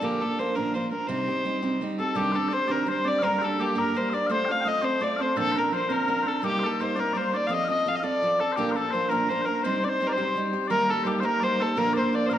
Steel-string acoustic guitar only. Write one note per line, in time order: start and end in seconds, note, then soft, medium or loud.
0.01 0.21 A#2 medium
0.01 0.21 D3 medium
0.01 0.21 F3 medium
0.01 0.21 A#3 medium
0.01 0.21 D4 medium
0.01 0.20 A#4 medium
0.22 0.38 F3 soft
0.22 0.38 A#3 soft
0.22 0.39 D4 soft
0.39 0.55 F3 soft
0.39 0.55 A#3 medium
0.39 0.55 D4 medium
0.39 0.54 A#4 medium
0.56 0.75 A#2 soft
0.56 0.75 D3 soft
0.56 0.73 F3 medium
0.56 0.74 A#3 medium
0.56 0.74 D4 medium
0.56 0.74 A#4 medium
0.74 0.91 F3 medium
0.74 0.91 A#3 medium
0.74 0.90 D4 medium
0.74 0.90 A#4 medium
0.91 1.08 F3 soft
0.91 1.09 A#3 soft
0.91 1.09 D4 soft
0.91 1.08 A#4 medium
1.08 1.27 C3 medium
1.08 1.28 G3 medium
1.08 1.28 C4 medium
1.08 1.27 D#4 medium
1.08 1.27 G4 medium
1.28 1.44 C4 soft
1.28 1.45 D#4 soft
1.28 1.45 G4 soft
1.45 1.62 G3 medium
1.45 1.62 C4 medium
1.45 1.61 D#4 medium
1.45 1.61 G4 medium
1.62 1.82 C3 medium
1.62 1.80 G3 soft
1.62 1.81 C4 medium
1.62 1.81 D#4 medium
1.62 1.81 G4 medium
1.81 1.98 G3 medium
1.81 1.99 C4 medium
1.81 1.98 D#4 medium
1.81 1.97 G4 medium
1.98 2.14 C4 soft
1.98 2.16 D#4 soft
1.98 2.15 G4 soft
2.15 2.34 C3 medium
2.15 2.34 D#3 medium
2.15 2.34 G3 medium
2.15 2.34 C4 medium
2.15 2.33 D4 medium
2.15 2.32 G4 medium
2.33 2.49 G3 soft
2.33 2.50 C4 soft
2.33 2.51 D4 medium
2.33 2.51 G4 soft
2.50 2.67 G3 soft
2.50 2.67 C4 soft
2.50 2.67 D4 medium
2.50 2.66 G4 medium
2.67 2.88 C3 soft
2.67 2.88 D#3 medium
2.67 2.84 G3 soft
2.67 2.85 C4 medium
2.67 2.86 D4 medium
2.67 2.87 G4 medium
2.86 3.04 G3 medium
2.86 3.03 C4 medium
2.86 3.03 D4 medium
2.86 3.02 G4 medium
3.03 3.21 G3 soft
3.03 3.22 C4 soft
3.03 3.21 D4 soft
3.03 3.22 G4 soft
3.22 3.41 G2 medium
3.22 3.41 D3 medium
3.22 3.41 G3 medium
3.22 3.41 A#3 medium
3.22 3.40 D4 medium
3.22 3.40 G4 medium
3.41 3.57 G3 soft
3.41 3.58 A#3 medium
3.41 3.59 D4 medium
3.41 3.58 G4 medium
3.58 3.75 G3 medium
3.58 3.74 A#3 medium
3.58 3.74 D4 soft
3.58 3.74 G4 medium
3.75 3.95 G2 soft
3.75 3.95 D3 soft
3.75 3.93 G3 soft
3.75 3.94 A#3 medium
3.75 3.94 D4 medium
3.75 3.94 G4 medium
3.95 4.12 G3 medium
3.95 4.12 A#3 medium
3.95 4.12 D4 medium
3.95 4.10 G4 medium
4.12 4.29 G3 soft
4.12 4.30 A#3 soft
4.12 4.30 D4 soft
4.12 4.29 G4 soft
4.29 4.48 A3 medium
4.29 4.49 C4 medium
4.29 4.48 F4 medium
4.29 4.47 A4 medium
4.48 4.65 C4 soft
4.48 4.65 F4 soft
4.48 4.65 A4 medium
4.65 4.81 A3 medium
4.65 4.81 C4 medium
4.65 4.81 F4 medium
4.65 4.80 A4 medium
4.82 4.99 A3 soft
4.82 5.00 C4 medium
4.82 5.00 F4 medium
4.82 5.01 A4 medium
5.01 5.18 A3 medium
5.01 5.18 C4 medium
5.01 5.18 F4 medium
5.01 5.17 A4 medium
5.18 5.35 C4 soft
5.18 5.36 F4 soft
5.18 5.36 A4 soft
5.36 5.55 A#2 medium
5.36 5.55 D3 medium
5.36 5.55 F3 medium
5.36 5.54 C4 medium
5.36 5.54 D4 medium
5.36 5.53 A#4 medium
5.54 5.70 F3 soft
5.54 5.71 C4 soft
5.54 5.72 D4 medium
5.54 5.72 A#4 soft
5.71 5.89 F3 medium
5.71 5.89 C4 soft
5.71 5.89 D4 medium
5.71 5.88 A#4 medium
5.90 6.09 A#2 soft
5.90 6.09 D3 soft
5.90 6.06 F3 medium
5.90 6.07 C4 soft
5.90 6.08 D4 soft
5.90 6.07 A#4 medium
6.07 6.25 F3 soft
6.07 6.24 C4 medium
6.07 6.24 D4 medium
6.07 6.23 A#4 medium
6.24 6.42 F3 soft
6.24 6.43 C4 soft
6.24 6.43 D4 soft
6.24 6.42 A#4 soft
6.42 6.61 C3 medium
6.42 6.62 G3 medium
6.42 6.62 A#3 medium
6.42 6.61 D#4 medium
6.42 6.61 A#4 medium
6.62 6.79 A#3 soft
6.62 6.80 D#4 soft
6.62 6.79 A#4 medium
6.80 6.96 G3 medium
6.80 6.96 A#3 medium
6.80 6.95 D#4 medium
6.80 6.95 A#4 medium
6.96 7.16 C3 soft
6.96 7.14 G3 soft
6.96 7.14 A#3 medium
6.96 7.15 D#4 medium
6.96 7.15 A#4 medium
7.15 7.32 G3 medium
7.15 7.33 A#3 medium
7.15 7.32 D#4 medium
7.15 7.31 A#4 medium
7.32 7.49 A#3 soft
7.32 7.50 D#4 soft
7.32 7.50 A#4 soft
7.49 7.68 F3 medium
7.49 7.69 C4 medium
7.49 7.68 F4 medium
7.49 7.67 A4 medium
7.68 7.85 C4 soft
7.68 7.86 F4 soft
7.68 7.86 A4 soft
7.86 8.03 F3 medium
7.86 8.03 C4 medium
7.86 8.02 F4 medium
7.86 8.02 A4 medium
8.03 8.21 F3 soft
8.03 8.22 C4 medium
8.03 8.22 F4 soft
8.03 8.22 A4 medium
8.22 8.39 F3 medium
8.22 8.40 C4 medium
8.22 8.40 F4 medium
8.22 8.39 A4 medium
8.40 8.58 C4 soft
8.40 8.58 F4 soft
8.40 8.57 A4 soft
8.57 8.76 A#2 medium
8.57 8.76 D3 medium
8.57 8.76 F3 medium
8.57 8.76 A#3 medium
8.57 8.75 D4 medium
8.57 8.74 A#4 medium
8.75 8.92 F3 soft
8.75 8.93 A#3 soft
8.75 8.93 D4 soft
8.75 8.93 A#4 medium
8.94 9.10 F3 medium
8.94 9.10 A#3 medium
8.94 9.10 D4 medium
8.94 9.10 A#4 medium
9.11 9.30 A#2 medium
9.11 9.30 D3 medium
9.11 9.28 F3 medium
9.11 9.29 A#3 medium
9.11 9.30 D4 medium
9.11 9.29 A#4 medium
9.29 9.46 F3 soft
9.29 9.47 A#3 medium
9.29 9.46 D4 medium
9.29 9.45 A#4 medium
9.46 9.64 F3 soft
9.46 9.64 A#3 soft
9.46 9.64 D4 soft
9.46 9.64 A#4 soft
9.64 9.83 C3 medium
9.64 9.83 G3 medium
9.64 9.83 C4 medium
9.64 9.82 D#4 medium
9.64 9.81 G4 medium
9.83 10.00 C4 soft
9.83 10.00 D#4 soft
9.83 10.00 G4 soft
10.00 10.17 G3 soft
10.00 10.17 C4 medium
10.00 10.16 D#4 medium
10.00 10.16 G4 medium
10.17 10.37 C3 soft
10.17 10.34 G3 medium
10.17 10.36 C4 soft
10.17 10.36 D#4 medium
10.17 10.36 G4 medium
10.36 10.53 G3 medium
10.36 10.54 C4 soft
10.36 10.53 D#4 medium
10.36 10.52 G4 soft
10.53 10.70 C4 soft
10.53 10.70 D#4 soft
10.53 10.70 G4 medium
10.70 10.89 D#3 medium
10.70 10.89 G3 medium
10.70 10.90 A#3 medium
10.70 10.89 D#4 medium
10.70 10.88 G4 medium
10.89 11.05 A#3 soft
10.89 11.05 D#4 soft
10.89 11.06 G4 soft
11.05 11.22 G3 medium
11.05 11.22 A#3 medium
11.05 11.22 D#4 medium
11.05 11.21 G4 medium
11.22 11.43 D#3 medium
11.22 11.40 G3 soft
11.22 11.41 A#3 medium
11.22 11.42 D#4 medium
11.22 11.42 G4 medium
11.42 11.60 G3 medium
11.42 11.60 A#3 medium
11.42 11.60 D#4 medium
11.42 11.58 G4 medium
11.59 11.76 A#3 soft
11.59 11.77 D#4 soft
11.59 11.77 G4 soft
11.76 11.96 A#2 medium
11.76 11.96 D3 medium
11.76 11.96 F3 medium
11.76 11.96 A#3 medium
11.76 11.95 D4 medium
11.76 11.94 A#4 medium
11.96 12.12 F3 soft
11.96 12.13 A#3 soft
11.96 12.14 D4 soft
11.96 12.13 A#4 medium
12.13 12.30 F3 medium
12.13 12.30 A#3 medium
12.13 12.29 D4 medium
12.13 12.29 A#4 medium
12.30 12.38 A#2 medium
12.30 12.38 D3 medium
12.30 12.38 F3 medium
12.30 12.38 A#3 medium
12.30 12.38 D4 medium
12.30 12.38 A#4 medium